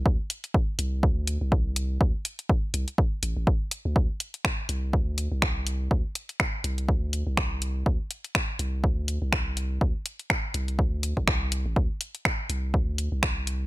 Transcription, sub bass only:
X:1
M:4/4
L:1/16
Q:"Swing 16ths" 1/4=123
K:C
V:1 name="Sub bass" clef=bass
D,, z4 z C,,2 D,,3 C,,4- C,, | D,, z4 z C,, z3 A,,, A,,, z3 D,, | D,, z4 z C,,2 D,,3 C,,4- C,, | D,, z4 z C,,2 D,,3 C,,4- C,, |
D,, z4 z C,,2 D,,3 C,,4- C,, | D,, z4 z C,,2 D,,3 C,,4 A,,, | D,, z4 z C,,2 D,,3 C,,4- C,, |]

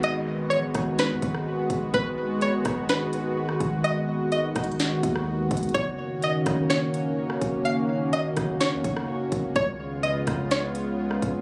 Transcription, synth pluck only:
X:1
M:4/4
L:1/8
Q:1/4=126
K:G#dor
V:1 name="Synth pluck"
d2 c2 B4 | B2 c2 B4 | d2 d2 z4 | c2 d2 c4 |
e2 d2 c4 | c2 d2 c4 |]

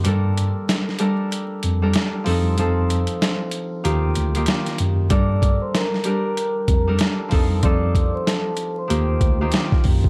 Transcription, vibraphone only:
X:1
M:4/4
L:1/16
Q:"Swing 16ths" 1/4=95
K:Gm
V:1 name="Vibraphone"
z16 | z16 | [dd']3 [cc'] [Bb]3 [Bb]4- [Bb] z4 | [dd']3 [cc'] [Aa]3 [cc']4- [cc'] z4 |]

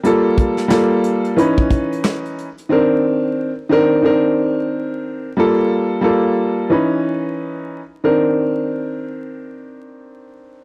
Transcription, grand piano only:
X:1
M:4/4
L:1/8
Q:"Swing 16ths" 1/4=90
K:Cm
V:1 name="Grand piano"
[G,B,F=A]2 [G,B,FA]2 [_F,_DE_c]3 z | [E,CDB]2 z [E,CDB] [E,CDB]4 | [G,B,F=A]2 [G,B,FA]2 [_F,_DE_c]3 z | [E,CDB]8 |]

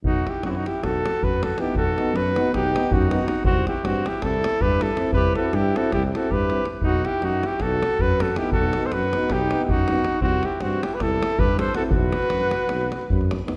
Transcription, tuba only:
X:1
M:9/8
L:1/8
Q:3/8=106
K:none
V:1 name="Tuba" clef=bass
B,,,2 ^F,,2 B,,,2 F,,3 | B,,,2 ^F,,2 B,,,2 F,,3 | C,,2 G,,2 C,,2 G,,3 | C,,2 G,,2 C,,2 G,,3 |
B,,,2 ^F,,2 B,,,2 F,,3 | B,,,2 ^F,,2 B,,,2 F,,3 | C,,2 G,,2 C,,2 G,,3 | B,,,2 ^F,,2 B,,,2 F,,3 |]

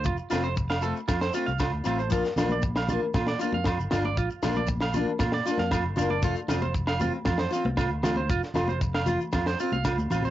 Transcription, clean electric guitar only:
X:1
M:4/4
L:1/16
Q:1/4=116
K:Bb
V:1 name="Clean electric guitar"
F z F c z f A z F c F f F z F c | F z F d z f F z F d F f F z F d | F z F d z f F z F d F f F z F d | F z F c z f F z F c F z F z F c |
F z F c z f F z F c F f F z F c |]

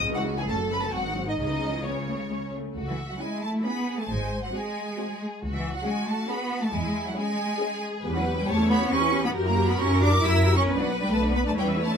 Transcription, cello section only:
X:1
M:3/4
L:1/16
Q:1/4=135
K:C#m
V:1 name="Cello section" clef=bass
C,,4 F,,4 G,,4 | C,8- C,2 z2 | z E,2 F, G,2 A,2 B,3 A, | G,3 F, G,6 z2 |
z E,2 F, G,2 A,2 B,3 A, | G,3 F, G,6 z2 | [K:Bm] z F,2 G, A,2 B,2 C3 B, | z ^A,2 B, C2 D2 E3 C |
z F,2 G, A,2 B, A, G,2 A,2 |]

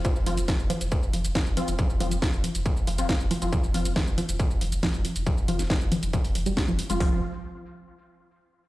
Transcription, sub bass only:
X:1
M:4/4
L:1/16
Q:1/4=138
K:Cphr
V:1 name="Sub bass" clef=bass
z F,,, F,,, F,,, z F,,, z F,,, z F,,, F,,, F,,, z F,,, z F,,, | z F,,, F,,, F,,, z F,,, z F,,, z F,,, F,,, F,,, z F,,, z F,,, | z F,,, F,,, F,,, z F,,, z F,,, z F,,, F,,, F,,, z F,,, z F,,, | z F,,, F,,, F,,, z F,,, z F,,, z F,,, F,,, F,,, z F,,, z F,,, |
F,,,2 z12 z2 |]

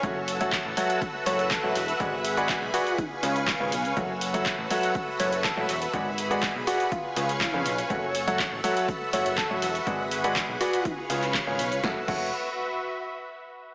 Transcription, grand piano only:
X:1
M:4/4
L:1/16
Q:1/4=122
K:F#m
V:1 name="Grand piano"
[F,FAcef] z2 [F,FAcef]2 z [F,FAcef]2 z2 [F,FAcef] z2 [F,FAcef] z2 | [G,FGBdf] z2 [G,FGBdf]2 z [FGBdf]2 z2 [C,^EGBc^e] z2 [C,EGBce] z2 | [F,FAcef] z2 [F,FAcef]2 z [F,FAcef]2 z2 [F,FAcef] z2 [F,FAcef] z2 | [G,FGBdf] z2 [G,FGBdf]2 z [FGBdf]2 z2 [C,^EGBc^e] z2 [C,EGBce] z2 |
[F,FAcef] z2 [F,FAcef]2 z [F,FAcef]2 z2 [F,FAcef] z2 [F,FAcef] z2 | [G,FGBdf] z2 [G,FGBdf]2 z [FGBdf]2 z2 [C,^EGBc^e] z2 [C,EGBce] z2 | [FAcef] z [FAcef]2 z12 |]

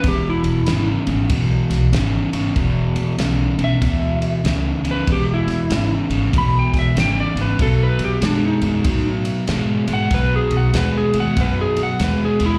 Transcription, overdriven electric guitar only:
X:1
M:4/4
L:1/8
Q:"Swing" 1/4=95
K:E
V:1 name="Overdriven electric guitar" clef=bass
[E,,B,,]2 [E,,C,] [E,,C,] [E,,B,,]2 [E,,C,] [E,,C,] | [E,,B,,]2 [E,,C,] [E,,C,] [E,,B,,]2 [E,,C,] [E,,C,] | [E,,B,,]2 [E,,C,] [E,,C,] [E,,B,,]2 [E,,C,] [E,,C,] | [B,,F,]2 [B,,G,] [B,,G,] [B,,F,]2 [B,,G,] [B,,G,] |
[B,,F,]2 [B,,G,] [B,,G,] [B,,F,]2 [B,,G,] [B,,G,] |]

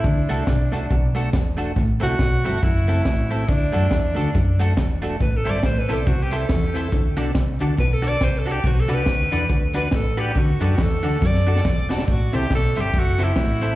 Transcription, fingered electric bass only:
X:1
M:4/4
L:1/8
Q:"Swing" 1/4=140
K:Ador
V:1 name="Fingered electric bass" clef=bass
D,, C,, B,,, C,, B,,,2 E,,,2 | A,,, C,, B,,, G,,, F,,,2 A,,,2 | D,, F,, E,, D,, F,,2 E,,,2 | A,,, G,,, A,,, B,,, C,,2 E,,2 |
D,, B,,, C,, D,, B,,,2 C,,2 | B,,, C,, D,, E,, D,,2 A,,,2 | D,, F,, E,, D,, F,,2 E,,,2 | A,,, C,, B,,, G,,, F,,,2 A,,,2 |]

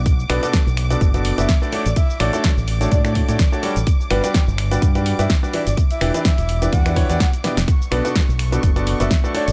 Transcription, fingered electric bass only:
X:1
M:4/4
L:1/16
Q:"Swing 16ths" 1/4=126
K:Bm
V:1 name="Fingered electric bass" clef=bass
B,,, z B,,, z2 B,,,2 z F,,,2 z F,,, z3 A,,, | z2 A,,, z2 A,,,2 z A,,2 z A,, z3 A,,, | z2 G,,, z2 G,,,2 z G,,2 z G,, z3 G,,, | z2 E,,, z2 E,,,2 z E,,2 z E,, z3 E,,, |
z2 B,,, z2 B,,,2 z F,,,2 z F,,, z3 A,,, |]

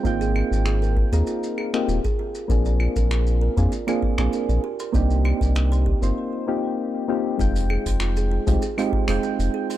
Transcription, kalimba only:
X:1
M:4/4
L:1/16
Q:1/4=98
K:Fdor
V:1 name="Kalimba"
F A F z A B F A F z A B F A F z | B d F B F z B d F B F z B d G c | G z c d G c G z8 z | F z A c F A F z A c F A F z A c |]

